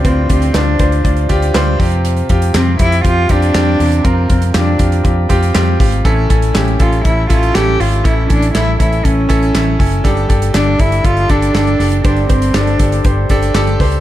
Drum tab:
HH |x-xx--xxxxxx--ox|xxxx--xxx-xx--ox|x-xx--xxx-xx--ox|x-xx-xxxx-xx--ox|
CP |----x-------x---|----x-------x---|----x-------x---|----x-------x---|
SD |----o-------o---|----o-------o---|----o-------o-o-|----o-------o---|
BD |o-o---o-o-o---o-|--o---o-o-o-----|o-o---o-o-o---o-|o-o---o-o-o-----|

HH |x-xx--xxx-xx--ox|xxxx--xxxxxx-xox|xxxx-xxxx-xx-xox|
CP |----x-------x---|----x-------x---|----x-------x---|
SD |----o-------o---|----o-------o-o-|----o-------o-o-|
BD |o-o---o-o-o---o-|o-o---o-o-o-----|o-o---o-o-o---o-|